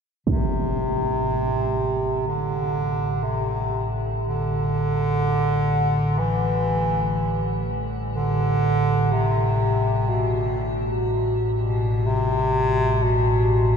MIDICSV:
0, 0, Header, 1, 5, 480
1, 0, Start_track
1, 0, Key_signature, 0, "minor"
1, 0, Tempo, 983607
1, 134, Time_signature, 4, 2, 24, 8
1, 6719, End_track
2, 0, Start_track
2, 0, Title_t, "Synth drone"
2, 0, Program_c, 0, 95
2, 130, Note_on_c, 0, 55, 74
2, 136, Note_on_c, 0, 67, 70
2, 6719, Note_off_c, 0, 55, 0
2, 6719, Note_off_c, 0, 67, 0
2, 6719, End_track
3, 0, Start_track
3, 0, Title_t, "Bass clarinet"
3, 0, Program_c, 1, 71
3, 129, Note_on_c, 1, 48, 77
3, 1092, Note_off_c, 1, 48, 0
3, 1108, Note_on_c, 1, 50, 73
3, 1578, Note_on_c, 1, 48, 68
3, 1586, Note_off_c, 1, 50, 0
3, 1936, Note_off_c, 1, 48, 0
3, 2076, Note_on_c, 1, 50, 88
3, 3018, Note_on_c, 1, 52, 83
3, 3025, Note_off_c, 1, 50, 0
3, 3736, Note_off_c, 1, 52, 0
3, 3975, Note_on_c, 1, 50, 99
3, 4454, Note_on_c, 1, 48, 78
3, 4461, Note_off_c, 1, 50, 0
3, 4923, Note_on_c, 1, 47, 73
3, 4931, Note_off_c, 1, 48, 0
3, 5409, Note_off_c, 1, 47, 0
3, 5663, Note_on_c, 1, 47, 81
3, 5888, Note_on_c, 1, 48, 104
3, 5895, Note_off_c, 1, 47, 0
3, 6361, Note_on_c, 1, 47, 79
3, 6368, Note_off_c, 1, 48, 0
3, 6719, Note_off_c, 1, 47, 0
3, 6719, End_track
4, 0, Start_track
4, 0, Title_t, "Synth drone"
4, 0, Program_c, 2, 95
4, 118, Note_on_c, 2, 33, 71
4, 122, Note_on_c, 2, 45, 70
4, 6719, Note_off_c, 2, 33, 0
4, 6719, Note_off_c, 2, 45, 0
4, 6719, End_track
5, 0, Start_track
5, 0, Title_t, "Impact"
5, 0, Program_c, 3, 103
5, 131, Note_on_c, 3, 60, 68
5, 228, Note_off_c, 3, 60, 0
5, 6719, End_track
0, 0, End_of_file